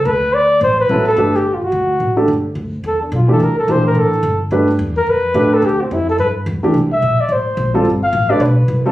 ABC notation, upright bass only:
X:1
M:4/4
L:1/8
Q:"Swing" 1/4=215
K:Gmix
V:1 name="Upright bass" clef=bass
D,,4 A,,,2 A,,,2 | G,,,3 z D,,2 A,,,2 | G,,,2 D,,2 E,,2 B,,,2 | C,,2 _B,,,2 A,,,2 G,,,2 |
G,,2 E,,2 F,,2 A,,2 | D,,2 F,,2 G,,2 E,, z | C,,2 _B,,, z A,,,2 B,,,2 | G,,,2 A,,,2 B,,,2 C,,2 |]